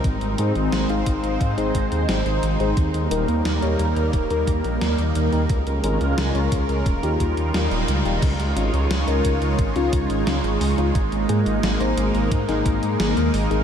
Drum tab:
CC |----------------|----------------|----------------|x---------------|
HH |xxxxxxxxxxxxxxxx|xxxxxxxxxxxxxxxx|xxxxxxxxxxxxxxxx|xxxxxxxxxxxxxxox|
SD |----o-------o---|----o-------o---|----o-------o---|----o-------o---|
BD |o-----o-o-o-----|o-------o-o-----|o-----o-o-o-----|o-----o-o-o-----|

CC |----------------|
HH |xxxxxxxxxxxxxxox|
SD |----o----o--o---|
BD |o-------o-o-----|